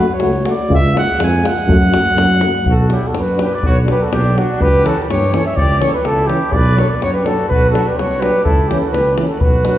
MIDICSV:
0, 0, Header, 1, 7, 480
1, 0, Start_track
1, 0, Key_signature, 2, "minor"
1, 0, Tempo, 486224
1, 699, Time_signature, 2, 2, 24, 8
1, 5016, Tempo, 480769
1, 9709, End_track
2, 0, Start_track
2, 0, Title_t, "Cornet"
2, 0, Program_c, 0, 56
2, 2667, Note_on_c, 0, 69, 80
2, 2892, Note_on_c, 0, 67, 77
2, 2906, Note_off_c, 0, 69, 0
2, 3031, Note_on_c, 0, 69, 71
2, 3045, Note_off_c, 0, 67, 0
2, 3155, Note_on_c, 0, 71, 87
2, 3169, Note_off_c, 0, 69, 0
2, 3368, Note_off_c, 0, 71, 0
2, 3398, Note_on_c, 0, 71, 94
2, 3499, Note_on_c, 0, 74, 79
2, 3513, Note_off_c, 0, 71, 0
2, 3598, Note_off_c, 0, 74, 0
2, 3639, Note_on_c, 0, 73, 96
2, 3734, Note_off_c, 0, 73, 0
2, 3864, Note_on_c, 0, 71, 97
2, 3966, Note_on_c, 0, 69, 70
2, 3981, Note_off_c, 0, 71, 0
2, 4068, Note_off_c, 0, 69, 0
2, 4074, Note_on_c, 0, 67, 94
2, 4319, Note_on_c, 0, 66, 92
2, 4334, Note_off_c, 0, 67, 0
2, 4552, Note_on_c, 0, 71, 107
2, 4567, Note_off_c, 0, 66, 0
2, 4792, Note_on_c, 0, 69, 95
2, 4807, Note_off_c, 0, 71, 0
2, 4947, Note_on_c, 0, 71, 80
2, 4962, Note_off_c, 0, 69, 0
2, 5025, Note_off_c, 0, 71, 0
2, 5031, Note_on_c, 0, 73, 100
2, 5249, Note_off_c, 0, 73, 0
2, 5276, Note_on_c, 0, 73, 104
2, 5384, Note_off_c, 0, 73, 0
2, 5393, Note_on_c, 0, 76, 73
2, 5496, Note_on_c, 0, 74, 110
2, 5511, Note_off_c, 0, 76, 0
2, 5730, Note_off_c, 0, 74, 0
2, 5736, Note_on_c, 0, 73, 95
2, 5854, Note_off_c, 0, 73, 0
2, 5871, Note_on_c, 0, 71, 87
2, 5982, Note_on_c, 0, 69, 102
2, 5997, Note_off_c, 0, 71, 0
2, 6201, Note_on_c, 0, 67, 87
2, 6216, Note_off_c, 0, 69, 0
2, 6459, Note_on_c, 0, 74, 93
2, 6474, Note_off_c, 0, 67, 0
2, 6703, Note_on_c, 0, 73, 86
2, 6718, Note_off_c, 0, 74, 0
2, 6822, Note_on_c, 0, 74, 74
2, 6837, Note_off_c, 0, 73, 0
2, 6940, Note_off_c, 0, 74, 0
2, 6957, Note_on_c, 0, 73, 105
2, 7055, Note_off_c, 0, 73, 0
2, 7061, Note_on_c, 0, 71, 83
2, 7180, Note_on_c, 0, 69, 88
2, 7195, Note_off_c, 0, 71, 0
2, 7410, Note_off_c, 0, 69, 0
2, 7416, Note_on_c, 0, 71, 94
2, 7627, Note_off_c, 0, 71, 0
2, 7633, Note_on_c, 0, 69, 83
2, 7803, Note_on_c, 0, 71, 66
2, 7818, Note_off_c, 0, 69, 0
2, 7896, Note_on_c, 0, 73, 89
2, 7911, Note_off_c, 0, 71, 0
2, 8132, Note_on_c, 0, 71, 96
2, 8147, Note_off_c, 0, 73, 0
2, 8359, Note_off_c, 0, 71, 0
2, 8364, Note_on_c, 0, 69, 84
2, 8607, Note_on_c, 0, 67, 76
2, 8622, Note_off_c, 0, 69, 0
2, 8723, Note_off_c, 0, 67, 0
2, 8729, Note_on_c, 0, 69, 67
2, 8833, Note_off_c, 0, 69, 0
2, 8839, Note_on_c, 0, 71, 88
2, 9071, Note_off_c, 0, 71, 0
2, 9203, Note_on_c, 0, 69, 67
2, 9325, Note_on_c, 0, 71, 83
2, 9340, Note_off_c, 0, 69, 0
2, 9709, Note_off_c, 0, 71, 0
2, 9709, End_track
3, 0, Start_track
3, 0, Title_t, "Trumpet"
3, 0, Program_c, 1, 56
3, 0, Note_on_c, 1, 71, 84
3, 132, Note_on_c, 1, 73, 83
3, 146, Note_off_c, 1, 71, 0
3, 473, Note_off_c, 1, 73, 0
3, 495, Note_on_c, 1, 74, 84
3, 702, Note_off_c, 1, 74, 0
3, 734, Note_on_c, 1, 76, 114
3, 942, Note_off_c, 1, 76, 0
3, 968, Note_on_c, 1, 78, 105
3, 1179, Note_off_c, 1, 78, 0
3, 1217, Note_on_c, 1, 80, 94
3, 1451, Note_on_c, 1, 78, 109
3, 1466, Note_off_c, 1, 80, 0
3, 2637, Note_off_c, 1, 78, 0
3, 2653, Note_on_c, 1, 66, 81
3, 2898, Note_on_c, 1, 64, 73
3, 2913, Note_off_c, 1, 66, 0
3, 3028, Note_on_c, 1, 66, 62
3, 3043, Note_off_c, 1, 64, 0
3, 3154, Note_off_c, 1, 66, 0
3, 3154, Note_on_c, 1, 66, 73
3, 3363, Note_off_c, 1, 66, 0
3, 3369, Note_on_c, 1, 67, 79
3, 3497, Note_on_c, 1, 71, 70
3, 3512, Note_off_c, 1, 67, 0
3, 3597, Note_off_c, 1, 71, 0
3, 3611, Note_on_c, 1, 66, 84
3, 3712, Note_off_c, 1, 66, 0
3, 3858, Note_on_c, 1, 67, 73
3, 3993, Note_on_c, 1, 66, 70
3, 4008, Note_off_c, 1, 67, 0
3, 4084, Note_off_c, 1, 66, 0
3, 4112, Note_on_c, 1, 62, 81
3, 4323, Note_off_c, 1, 62, 0
3, 4323, Note_on_c, 1, 62, 76
3, 4574, Note_on_c, 1, 67, 91
3, 4589, Note_off_c, 1, 62, 0
3, 4802, Note_on_c, 1, 66, 82
3, 4816, Note_off_c, 1, 67, 0
3, 4915, Note_on_c, 1, 67, 69
3, 4929, Note_off_c, 1, 66, 0
3, 5023, Note_off_c, 1, 67, 0
3, 5044, Note_on_c, 1, 67, 83
3, 5256, Note_off_c, 1, 67, 0
3, 5296, Note_on_c, 1, 69, 71
3, 5395, Note_off_c, 1, 69, 0
3, 5413, Note_on_c, 1, 73, 88
3, 5533, Note_on_c, 1, 67, 101
3, 5548, Note_off_c, 1, 73, 0
3, 5758, Note_off_c, 1, 67, 0
3, 5780, Note_on_c, 1, 69, 81
3, 5878, Note_off_c, 1, 69, 0
3, 5930, Note_on_c, 1, 67, 73
3, 6051, Note_on_c, 1, 64, 79
3, 6066, Note_off_c, 1, 67, 0
3, 6258, Note_off_c, 1, 64, 0
3, 6258, Note_on_c, 1, 64, 77
3, 6490, Note_on_c, 1, 71, 94
3, 6505, Note_off_c, 1, 64, 0
3, 6736, Note_on_c, 1, 69, 77
3, 6751, Note_off_c, 1, 71, 0
3, 6876, Note_on_c, 1, 71, 60
3, 6891, Note_off_c, 1, 69, 0
3, 6962, Note_off_c, 1, 71, 0
3, 6968, Note_on_c, 1, 66, 69
3, 7073, Note_off_c, 1, 66, 0
3, 7088, Note_on_c, 1, 67, 72
3, 7218, Note_on_c, 1, 66, 67
3, 7233, Note_off_c, 1, 67, 0
3, 7441, Note_off_c, 1, 66, 0
3, 7448, Note_on_c, 1, 66, 87
3, 7660, Note_off_c, 1, 66, 0
3, 7693, Note_on_c, 1, 66, 73
3, 7813, Note_on_c, 1, 67, 62
3, 7828, Note_off_c, 1, 66, 0
3, 7915, Note_on_c, 1, 66, 78
3, 7930, Note_off_c, 1, 67, 0
3, 8167, Note_on_c, 1, 67, 77
3, 8182, Note_off_c, 1, 66, 0
3, 8371, Note_off_c, 1, 67, 0
3, 8377, Note_on_c, 1, 64, 83
3, 8640, Note_off_c, 1, 64, 0
3, 8640, Note_on_c, 1, 64, 65
3, 8755, Note_off_c, 1, 64, 0
3, 8791, Note_on_c, 1, 66, 63
3, 8877, Note_off_c, 1, 66, 0
3, 8881, Note_on_c, 1, 67, 69
3, 9094, Note_off_c, 1, 67, 0
3, 9226, Note_on_c, 1, 66, 69
3, 9349, Note_off_c, 1, 66, 0
3, 9349, Note_on_c, 1, 66, 91
3, 9709, Note_off_c, 1, 66, 0
3, 9709, End_track
4, 0, Start_track
4, 0, Title_t, "Euphonium"
4, 0, Program_c, 2, 58
4, 195, Note_on_c, 2, 66, 80
4, 295, Note_off_c, 2, 66, 0
4, 435, Note_on_c, 2, 66, 69
4, 536, Note_off_c, 2, 66, 0
4, 687, Note_on_c, 2, 65, 82
4, 786, Note_off_c, 2, 65, 0
4, 918, Note_on_c, 2, 65, 83
4, 1019, Note_off_c, 2, 65, 0
4, 1152, Note_on_c, 2, 65, 73
4, 1254, Note_off_c, 2, 65, 0
4, 1408, Note_on_c, 2, 65, 75
4, 1507, Note_off_c, 2, 65, 0
4, 1642, Note_on_c, 2, 66, 73
4, 1742, Note_off_c, 2, 66, 0
4, 1866, Note_on_c, 2, 66, 73
4, 1969, Note_off_c, 2, 66, 0
4, 2112, Note_on_c, 2, 66, 63
4, 2214, Note_off_c, 2, 66, 0
4, 2361, Note_on_c, 2, 66, 61
4, 2461, Note_off_c, 2, 66, 0
4, 2857, Note_on_c, 2, 62, 61
4, 2954, Note_off_c, 2, 62, 0
4, 3320, Note_on_c, 2, 62, 68
4, 3420, Note_off_c, 2, 62, 0
4, 3799, Note_on_c, 2, 62, 77
4, 3899, Note_off_c, 2, 62, 0
4, 4310, Note_on_c, 2, 62, 70
4, 4404, Note_off_c, 2, 62, 0
4, 4761, Note_on_c, 2, 61, 76
4, 4860, Note_off_c, 2, 61, 0
4, 5255, Note_on_c, 2, 61, 74
4, 5352, Note_off_c, 2, 61, 0
4, 5737, Note_on_c, 2, 61, 70
4, 5834, Note_off_c, 2, 61, 0
4, 6211, Note_on_c, 2, 61, 58
4, 6309, Note_off_c, 2, 61, 0
4, 6702, Note_on_c, 2, 62, 61
4, 6798, Note_off_c, 2, 62, 0
4, 7178, Note_on_c, 2, 62, 74
4, 7275, Note_off_c, 2, 62, 0
4, 7661, Note_on_c, 2, 62, 79
4, 7757, Note_off_c, 2, 62, 0
4, 8141, Note_on_c, 2, 62, 68
4, 8237, Note_off_c, 2, 62, 0
4, 8635, Note_on_c, 2, 61, 78
4, 8728, Note_off_c, 2, 61, 0
4, 9132, Note_on_c, 2, 61, 58
4, 9221, Note_off_c, 2, 61, 0
4, 9591, Note_on_c, 2, 62, 61
4, 9684, Note_off_c, 2, 62, 0
4, 9709, End_track
5, 0, Start_track
5, 0, Title_t, "Trombone"
5, 0, Program_c, 3, 57
5, 205, Note_on_c, 3, 57, 70
5, 304, Note_off_c, 3, 57, 0
5, 435, Note_on_c, 3, 57, 63
5, 536, Note_off_c, 3, 57, 0
5, 678, Note_on_c, 3, 56, 76
5, 778, Note_off_c, 3, 56, 0
5, 931, Note_on_c, 3, 56, 67
5, 1029, Note_off_c, 3, 56, 0
5, 1159, Note_on_c, 3, 56, 55
5, 1260, Note_off_c, 3, 56, 0
5, 1402, Note_on_c, 3, 56, 58
5, 1502, Note_off_c, 3, 56, 0
5, 1649, Note_on_c, 3, 57, 73
5, 1748, Note_off_c, 3, 57, 0
5, 1890, Note_on_c, 3, 57, 56
5, 1989, Note_off_c, 3, 57, 0
5, 2111, Note_on_c, 3, 57, 54
5, 2213, Note_off_c, 3, 57, 0
5, 2368, Note_on_c, 3, 57, 51
5, 2467, Note_off_c, 3, 57, 0
5, 2865, Note_on_c, 3, 54, 57
5, 2960, Note_off_c, 3, 54, 0
5, 3327, Note_on_c, 3, 54, 50
5, 3426, Note_off_c, 3, 54, 0
5, 3800, Note_on_c, 3, 54, 68
5, 3900, Note_off_c, 3, 54, 0
5, 4282, Note_on_c, 3, 54, 61
5, 4381, Note_off_c, 3, 54, 0
5, 4770, Note_on_c, 3, 52, 70
5, 4867, Note_off_c, 3, 52, 0
5, 5253, Note_on_c, 3, 52, 63
5, 5350, Note_off_c, 3, 52, 0
5, 5737, Note_on_c, 3, 52, 52
5, 5834, Note_off_c, 3, 52, 0
5, 6217, Note_on_c, 3, 52, 59
5, 6314, Note_off_c, 3, 52, 0
5, 6680, Note_on_c, 3, 54, 56
5, 6781, Note_off_c, 3, 54, 0
5, 7171, Note_on_c, 3, 54, 58
5, 7270, Note_off_c, 3, 54, 0
5, 7650, Note_on_c, 3, 54, 64
5, 7749, Note_off_c, 3, 54, 0
5, 8128, Note_on_c, 3, 54, 63
5, 8227, Note_off_c, 3, 54, 0
5, 8621, Note_on_c, 3, 52, 64
5, 8717, Note_off_c, 3, 52, 0
5, 9092, Note_on_c, 3, 52, 64
5, 9189, Note_off_c, 3, 52, 0
5, 9584, Note_on_c, 3, 54, 58
5, 9678, Note_off_c, 3, 54, 0
5, 9709, End_track
6, 0, Start_track
6, 0, Title_t, "Tuba"
6, 0, Program_c, 4, 58
6, 213, Note_on_c, 4, 37, 81
6, 479, Note_off_c, 4, 37, 0
6, 681, Note_on_c, 4, 37, 116
6, 951, Note_off_c, 4, 37, 0
6, 1174, Note_on_c, 4, 41, 96
6, 1440, Note_off_c, 4, 41, 0
6, 1647, Note_on_c, 4, 42, 104
6, 1915, Note_off_c, 4, 42, 0
6, 2126, Note_on_c, 4, 42, 95
6, 2395, Note_off_c, 4, 42, 0
6, 2618, Note_on_c, 4, 35, 98
6, 2883, Note_off_c, 4, 35, 0
6, 3089, Note_on_c, 4, 42, 73
6, 3356, Note_off_c, 4, 42, 0
6, 3586, Note_on_c, 4, 35, 89
6, 3848, Note_off_c, 4, 35, 0
6, 4054, Note_on_c, 4, 35, 87
6, 4319, Note_off_c, 4, 35, 0
6, 4535, Note_on_c, 4, 37, 100
6, 4799, Note_off_c, 4, 37, 0
6, 5019, Note_on_c, 4, 43, 86
6, 5284, Note_off_c, 4, 43, 0
6, 5498, Note_on_c, 4, 37, 98
6, 5763, Note_off_c, 4, 37, 0
6, 5987, Note_on_c, 4, 37, 89
6, 6250, Note_off_c, 4, 37, 0
6, 6470, Note_on_c, 4, 35, 106
6, 6733, Note_off_c, 4, 35, 0
6, 6955, Note_on_c, 4, 42, 78
6, 7216, Note_off_c, 4, 42, 0
6, 7423, Note_on_c, 4, 35, 95
6, 7687, Note_off_c, 4, 35, 0
6, 7897, Note_on_c, 4, 36, 76
6, 8163, Note_off_c, 4, 36, 0
6, 8381, Note_on_c, 4, 37, 93
6, 8644, Note_off_c, 4, 37, 0
6, 8857, Note_on_c, 4, 37, 91
6, 9121, Note_off_c, 4, 37, 0
6, 9339, Note_on_c, 4, 35, 84
6, 9601, Note_off_c, 4, 35, 0
6, 9709, End_track
7, 0, Start_track
7, 0, Title_t, "Davul"
7, 195, Note_on_c, 9, 37, 74
7, 294, Note_off_c, 9, 37, 0
7, 325, Note_on_c, 9, 37, 28
7, 424, Note_off_c, 9, 37, 0
7, 449, Note_on_c, 9, 37, 68
7, 548, Note_off_c, 9, 37, 0
7, 581, Note_on_c, 9, 37, 27
7, 680, Note_off_c, 9, 37, 0
7, 695, Note_on_c, 9, 43, 89
7, 794, Note_off_c, 9, 43, 0
7, 958, Note_on_c, 9, 37, 74
7, 1057, Note_off_c, 9, 37, 0
7, 1186, Note_on_c, 9, 37, 84
7, 1285, Note_off_c, 9, 37, 0
7, 1320, Note_on_c, 9, 37, 28
7, 1419, Note_off_c, 9, 37, 0
7, 1435, Note_on_c, 9, 37, 91
7, 1534, Note_off_c, 9, 37, 0
7, 1559, Note_on_c, 9, 37, 32
7, 1657, Note_off_c, 9, 37, 0
7, 1670, Note_on_c, 9, 43, 114
7, 1768, Note_off_c, 9, 43, 0
7, 1801, Note_on_c, 9, 37, 33
7, 1900, Note_off_c, 9, 37, 0
7, 1911, Note_on_c, 9, 37, 79
7, 2010, Note_off_c, 9, 37, 0
7, 2030, Note_on_c, 9, 37, 27
7, 2128, Note_off_c, 9, 37, 0
7, 2153, Note_on_c, 9, 37, 86
7, 2252, Note_off_c, 9, 37, 0
7, 2271, Note_on_c, 9, 37, 29
7, 2370, Note_off_c, 9, 37, 0
7, 2380, Note_on_c, 9, 37, 73
7, 2479, Note_off_c, 9, 37, 0
7, 2515, Note_on_c, 9, 37, 29
7, 2614, Note_off_c, 9, 37, 0
7, 2627, Note_on_c, 9, 43, 90
7, 2725, Note_off_c, 9, 43, 0
7, 2862, Note_on_c, 9, 37, 69
7, 2961, Note_off_c, 9, 37, 0
7, 3105, Note_on_c, 9, 37, 72
7, 3203, Note_off_c, 9, 37, 0
7, 3231, Note_on_c, 9, 37, 26
7, 3330, Note_off_c, 9, 37, 0
7, 3347, Note_on_c, 9, 37, 72
7, 3446, Note_off_c, 9, 37, 0
7, 3585, Note_on_c, 9, 43, 90
7, 3684, Note_off_c, 9, 43, 0
7, 3831, Note_on_c, 9, 37, 69
7, 3930, Note_off_c, 9, 37, 0
7, 4074, Note_on_c, 9, 37, 79
7, 4172, Note_off_c, 9, 37, 0
7, 4201, Note_on_c, 9, 37, 27
7, 4299, Note_off_c, 9, 37, 0
7, 4322, Note_on_c, 9, 37, 64
7, 4421, Note_off_c, 9, 37, 0
7, 4553, Note_on_c, 9, 43, 94
7, 4651, Note_off_c, 9, 43, 0
7, 4796, Note_on_c, 9, 37, 71
7, 4894, Note_off_c, 9, 37, 0
7, 5040, Note_on_c, 9, 37, 84
7, 5140, Note_off_c, 9, 37, 0
7, 5165, Note_on_c, 9, 37, 26
7, 5265, Note_off_c, 9, 37, 0
7, 5272, Note_on_c, 9, 37, 74
7, 5372, Note_off_c, 9, 37, 0
7, 5507, Note_on_c, 9, 43, 86
7, 5607, Note_off_c, 9, 43, 0
7, 5647, Note_on_c, 9, 37, 28
7, 5746, Note_off_c, 9, 37, 0
7, 5749, Note_on_c, 9, 37, 69
7, 5849, Note_off_c, 9, 37, 0
7, 5878, Note_on_c, 9, 37, 27
7, 5978, Note_off_c, 9, 37, 0
7, 5983, Note_on_c, 9, 37, 75
7, 6082, Note_off_c, 9, 37, 0
7, 6123, Note_on_c, 9, 37, 26
7, 6223, Note_off_c, 9, 37, 0
7, 6228, Note_on_c, 9, 37, 60
7, 6328, Note_off_c, 9, 37, 0
7, 6356, Note_on_c, 9, 37, 25
7, 6455, Note_off_c, 9, 37, 0
7, 6456, Note_on_c, 9, 43, 91
7, 6555, Note_off_c, 9, 43, 0
7, 6716, Note_on_c, 9, 37, 63
7, 6816, Note_off_c, 9, 37, 0
7, 6954, Note_on_c, 9, 37, 68
7, 7053, Note_off_c, 9, 37, 0
7, 7084, Note_on_c, 9, 37, 26
7, 7184, Note_off_c, 9, 37, 0
7, 7190, Note_on_c, 9, 37, 60
7, 7290, Note_off_c, 9, 37, 0
7, 7444, Note_on_c, 9, 43, 86
7, 7544, Note_off_c, 9, 43, 0
7, 7683, Note_on_c, 9, 37, 74
7, 7783, Note_off_c, 9, 37, 0
7, 7923, Note_on_c, 9, 37, 71
7, 8023, Note_off_c, 9, 37, 0
7, 8040, Note_on_c, 9, 37, 27
7, 8140, Note_off_c, 9, 37, 0
7, 8154, Note_on_c, 9, 37, 66
7, 8254, Note_off_c, 9, 37, 0
7, 8385, Note_on_c, 9, 43, 90
7, 8485, Note_off_c, 9, 43, 0
7, 8637, Note_on_c, 9, 37, 71
7, 8737, Note_off_c, 9, 37, 0
7, 8873, Note_on_c, 9, 37, 68
7, 8973, Note_off_c, 9, 37, 0
7, 8996, Note_on_c, 9, 37, 26
7, 9096, Note_off_c, 9, 37, 0
7, 9104, Note_on_c, 9, 37, 75
7, 9204, Note_off_c, 9, 37, 0
7, 9338, Note_on_c, 9, 43, 101
7, 9438, Note_off_c, 9, 43, 0
7, 9467, Note_on_c, 9, 37, 24
7, 9567, Note_off_c, 9, 37, 0
7, 9575, Note_on_c, 9, 37, 69
7, 9675, Note_off_c, 9, 37, 0
7, 9709, End_track
0, 0, End_of_file